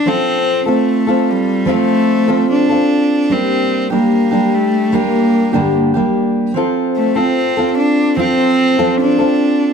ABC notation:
X:1
M:4/4
L:1/16
Q:1/4=74
K:F
V:1 name="Steel-string acoustic guitar"
[F,CFA]3 [CFA]2 [CFA]3 [F,CFA]3 [F,CFA]2 [CFA]3 | [G,B,DG]3 [G,B,DG]2 [G,DG]3 [G,B,DG]3 [G,,D,G,B,DG]2 [G,B,DG]3 | [F,CFA]3 [CFA]2 [CFA]3 [F,CFA]3 [F,CFA]2 [CFA]3 |]
V:2 name="Cello"
C3 A,3 G,2 A,4 D4 | C3 B,3 A,2 B,4 z4 | z2 A, C3 D2 C4 D4 |]